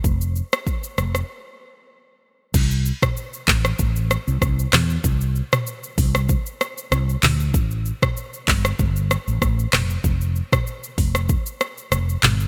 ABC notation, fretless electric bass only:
X:1
M:4/4
L:1/16
Q:"Swing 16ths" 1/4=96
K:C
V:1 name="Fretless electric bass" clef=bass
F,,,3 z3 F,,,2 z8 | C,,3 z3 A,,,2 A,,,3 C,, C,,2 E,,2 | C,,3 z3 C,,3 z3 C,,2 D,,2 | A,,,3 z3 G,,,2 G,,,3 A,,, A,,,2 F,,,2 |
F,,,3 z3 F,,,3 z3 F,,,2 G,,,2 |]